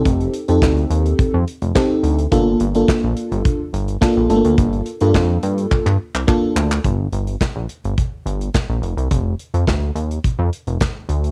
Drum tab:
HH |xxxx-xxxx-xx--xx|x-xx--xxx-xx--xx|xxxx--xx--------|x-xxx-xxx-xxx-xx|
CP |----x-------x---|----x-------x---|----x---xx-xx-xx|----x-------x---|
SD |----o-------o---|----o-------o---|----o-----------|----o-------o---|
BD |o---o---o---o---|o---o---o---o---|o---o---o---o---|o---o---o---o---|

HH |x-xxx-xxx-xxx-xx|
CP |----x-------x---|
SD |----o-------o---|
BD |o---o---o---o---|